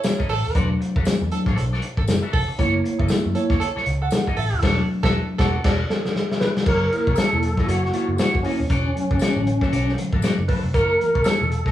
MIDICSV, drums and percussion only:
0, 0, Header, 1, 2, 480
1, 0, Start_track
1, 0, Tempo, 509338
1, 522, Time_signature, 4, 2, 24, 8
1, 11041, End_track
2, 0, Start_track
2, 0, Title_t, "Drums"
2, 33, Note_on_c, 9, 54, 104
2, 37, Note_on_c, 9, 42, 86
2, 41, Note_on_c, 9, 38, 106
2, 128, Note_off_c, 9, 54, 0
2, 131, Note_off_c, 9, 42, 0
2, 136, Note_off_c, 9, 38, 0
2, 187, Note_on_c, 9, 36, 74
2, 274, Note_on_c, 9, 46, 79
2, 281, Note_off_c, 9, 36, 0
2, 368, Note_off_c, 9, 46, 0
2, 517, Note_on_c, 9, 42, 77
2, 518, Note_on_c, 9, 36, 103
2, 612, Note_off_c, 9, 36, 0
2, 612, Note_off_c, 9, 42, 0
2, 769, Note_on_c, 9, 42, 70
2, 863, Note_off_c, 9, 42, 0
2, 904, Note_on_c, 9, 36, 97
2, 991, Note_on_c, 9, 54, 92
2, 998, Note_off_c, 9, 36, 0
2, 1000, Note_on_c, 9, 42, 85
2, 1005, Note_on_c, 9, 38, 110
2, 1085, Note_off_c, 9, 54, 0
2, 1094, Note_off_c, 9, 42, 0
2, 1099, Note_off_c, 9, 38, 0
2, 1239, Note_on_c, 9, 42, 73
2, 1333, Note_off_c, 9, 42, 0
2, 1378, Note_on_c, 9, 36, 85
2, 1379, Note_on_c, 9, 38, 34
2, 1472, Note_off_c, 9, 36, 0
2, 1473, Note_off_c, 9, 38, 0
2, 1484, Note_on_c, 9, 42, 86
2, 1579, Note_off_c, 9, 42, 0
2, 1634, Note_on_c, 9, 38, 33
2, 1714, Note_on_c, 9, 42, 79
2, 1728, Note_off_c, 9, 38, 0
2, 1808, Note_off_c, 9, 42, 0
2, 1860, Note_on_c, 9, 36, 88
2, 1954, Note_off_c, 9, 36, 0
2, 1956, Note_on_c, 9, 54, 98
2, 1961, Note_on_c, 9, 42, 84
2, 1966, Note_on_c, 9, 38, 103
2, 2050, Note_off_c, 9, 54, 0
2, 2056, Note_off_c, 9, 42, 0
2, 2060, Note_off_c, 9, 38, 0
2, 2197, Note_on_c, 9, 46, 82
2, 2201, Note_on_c, 9, 36, 101
2, 2292, Note_off_c, 9, 46, 0
2, 2295, Note_off_c, 9, 36, 0
2, 2439, Note_on_c, 9, 36, 96
2, 2443, Note_on_c, 9, 42, 87
2, 2534, Note_off_c, 9, 36, 0
2, 2537, Note_off_c, 9, 42, 0
2, 2689, Note_on_c, 9, 42, 76
2, 2783, Note_off_c, 9, 42, 0
2, 2822, Note_on_c, 9, 36, 94
2, 2908, Note_on_c, 9, 54, 93
2, 2917, Note_off_c, 9, 36, 0
2, 2918, Note_on_c, 9, 42, 90
2, 2923, Note_on_c, 9, 38, 112
2, 3002, Note_off_c, 9, 54, 0
2, 3012, Note_off_c, 9, 42, 0
2, 3017, Note_off_c, 9, 38, 0
2, 3158, Note_on_c, 9, 42, 76
2, 3252, Note_off_c, 9, 42, 0
2, 3298, Note_on_c, 9, 36, 93
2, 3302, Note_on_c, 9, 38, 35
2, 3392, Note_off_c, 9, 36, 0
2, 3396, Note_off_c, 9, 38, 0
2, 3403, Note_on_c, 9, 42, 86
2, 3497, Note_off_c, 9, 42, 0
2, 3554, Note_on_c, 9, 38, 33
2, 3637, Note_on_c, 9, 42, 91
2, 3648, Note_off_c, 9, 38, 0
2, 3732, Note_off_c, 9, 42, 0
2, 3870, Note_on_c, 9, 54, 104
2, 3881, Note_on_c, 9, 42, 80
2, 3885, Note_on_c, 9, 38, 107
2, 3964, Note_off_c, 9, 54, 0
2, 3975, Note_off_c, 9, 42, 0
2, 3980, Note_off_c, 9, 38, 0
2, 4027, Note_on_c, 9, 36, 68
2, 4114, Note_on_c, 9, 46, 80
2, 4122, Note_off_c, 9, 36, 0
2, 4208, Note_off_c, 9, 46, 0
2, 4360, Note_on_c, 9, 36, 97
2, 4360, Note_on_c, 9, 49, 84
2, 4367, Note_on_c, 9, 38, 108
2, 4454, Note_off_c, 9, 36, 0
2, 4454, Note_off_c, 9, 49, 0
2, 4461, Note_off_c, 9, 38, 0
2, 4744, Note_on_c, 9, 36, 117
2, 4752, Note_on_c, 9, 38, 111
2, 4838, Note_off_c, 9, 36, 0
2, 4846, Note_off_c, 9, 38, 0
2, 5080, Note_on_c, 9, 36, 110
2, 5084, Note_on_c, 9, 38, 107
2, 5174, Note_off_c, 9, 36, 0
2, 5179, Note_off_c, 9, 38, 0
2, 5317, Note_on_c, 9, 49, 92
2, 5320, Note_on_c, 9, 36, 119
2, 5323, Note_on_c, 9, 38, 110
2, 5411, Note_off_c, 9, 49, 0
2, 5414, Note_off_c, 9, 36, 0
2, 5417, Note_off_c, 9, 38, 0
2, 5563, Note_on_c, 9, 38, 77
2, 5657, Note_off_c, 9, 38, 0
2, 5706, Note_on_c, 9, 38, 72
2, 5801, Note_off_c, 9, 38, 0
2, 5804, Note_on_c, 9, 38, 73
2, 5898, Note_off_c, 9, 38, 0
2, 5951, Note_on_c, 9, 38, 73
2, 6042, Note_off_c, 9, 38, 0
2, 6042, Note_on_c, 9, 38, 107
2, 6136, Note_off_c, 9, 38, 0
2, 6189, Note_on_c, 9, 38, 95
2, 6277, Note_on_c, 9, 49, 92
2, 6279, Note_on_c, 9, 36, 102
2, 6283, Note_off_c, 9, 38, 0
2, 6371, Note_off_c, 9, 49, 0
2, 6374, Note_off_c, 9, 36, 0
2, 6526, Note_on_c, 9, 42, 79
2, 6620, Note_off_c, 9, 42, 0
2, 6664, Note_on_c, 9, 36, 96
2, 6743, Note_on_c, 9, 54, 95
2, 6758, Note_off_c, 9, 36, 0
2, 6762, Note_on_c, 9, 42, 96
2, 6767, Note_on_c, 9, 38, 106
2, 6838, Note_off_c, 9, 54, 0
2, 6856, Note_off_c, 9, 42, 0
2, 6861, Note_off_c, 9, 38, 0
2, 6998, Note_on_c, 9, 42, 78
2, 7092, Note_off_c, 9, 42, 0
2, 7138, Note_on_c, 9, 36, 96
2, 7142, Note_on_c, 9, 38, 37
2, 7232, Note_off_c, 9, 36, 0
2, 7236, Note_off_c, 9, 38, 0
2, 7242, Note_on_c, 9, 42, 91
2, 7336, Note_off_c, 9, 42, 0
2, 7397, Note_on_c, 9, 38, 29
2, 7476, Note_on_c, 9, 42, 81
2, 7491, Note_off_c, 9, 38, 0
2, 7571, Note_off_c, 9, 42, 0
2, 7711, Note_on_c, 9, 54, 97
2, 7718, Note_on_c, 9, 42, 82
2, 7723, Note_on_c, 9, 38, 102
2, 7805, Note_off_c, 9, 54, 0
2, 7812, Note_off_c, 9, 42, 0
2, 7817, Note_off_c, 9, 38, 0
2, 7867, Note_on_c, 9, 36, 69
2, 7958, Note_on_c, 9, 46, 86
2, 7961, Note_off_c, 9, 36, 0
2, 8052, Note_off_c, 9, 46, 0
2, 8198, Note_on_c, 9, 36, 105
2, 8199, Note_on_c, 9, 42, 83
2, 8293, Note_off_c, 9, 36, 0
2, 8293, Note_off_c, 9, 42, 0
2, 8451, Note_on_c, 9, 42, 68
2, 8545, Note_off_c, 9, 42, 0
2, 8584, Note_on_c, 9, 36, 93
2, 8664, Note_on_c, 9, 54, 86
2, 8678, Note_off_c, 9, 36, 0
2, 8684, Note_on_c, 9, 42, 98
2, 8689, Note_on_c, 9, 38, 112
2, 8759, Note_off_c, 9, 54, 0
2, 8778, Note_off_c, 9, 42, 0
2, 8783, Note_off_c, 9, 38, 0
2, 8923, Note_on_c, 9, 42, 72
2, 9017, Note_off_c, 9, 42, 0
2, 9060, Note_on_c, 9, 36, 88
2, 9065, Note_on_c, 9, 38, 33
2, 9154, Note_off_c, 9, 36, 0
2, 9160, Note_off_c, 9, 38, 0
2, 9168, Note_on_c, 9, 42, 93
2, 9262, Note_off_c, 9, 42, 0
2, 9317, Note_on_c, 9, 38, 32
2, 9404, Note_on_c, 9, 42, 84
2, 9411, Note_off_c, 9, 38, 0
2, 9499, Note_off_c, 9, 42, 0
2, 9542, Note_on_c, 9, 36, 93
2, 9633, Note_on_c, 9, 54, 110
2, 9637, Note_off_c, 9, 36, 0
2, 9647, Note_on_c, 9, 42, 75
2, 9652, Note_on_c, 9, 38, 96
2, 9727, Note_off_c, 9, 54, 0
2, 9742, Note_off_c, 9, 42, 0
2, 9746, Note_off_c, 9, 38, 0
2, 9879, Note_on_c, 9, 46, 88
2, 9884, Note_on_c, 9, 36, 89
2, 9974, Note_off_c, 9, 46, 0
2, 9978, Note_off_c, 9, 36, 0
2, 10124, Note_on_c, 9, 36, 104
2, 10128, Note_on_c, 9, 42, 82
2, 10219, Note_off_c, 9, 36, 0
2, 10222, Note_off_c, 9, 42, 0
2, 10376, Note_on_c, 9, 42, 71
2, 10470, Note_off_c, 9, 42, 0
2, 10510, Note_on_c, 9, 36, 88
2, 10594, Note_on_c, 9, 54, 92
2, 10605, Note_off_c, 9, 36, 0
2, 10607, Note_on_c, 9, 42, 92
2, 10612, Note_on_c, 9, 38, 104
2, 10688, Note_off_c, 9, 54, 0
2, 10701, Note_off_c, 9, 42, 0
2, 10706, Note_off_c, 9, 38, 0
2, 10852, Note_on_c, 9, 42, 72
2, 10947, Note_off_c, 9, 42, 0
2, 10987, Note_on_c, 9, 36, 90
2, 10991, Note_on_c, 9, 38, 34
2, 11041, Note_off_c, 9, 36, 0
2, 11041, Note_off_c, 9, 38, 0
2, 11041, End_track
0, 0, End_of_file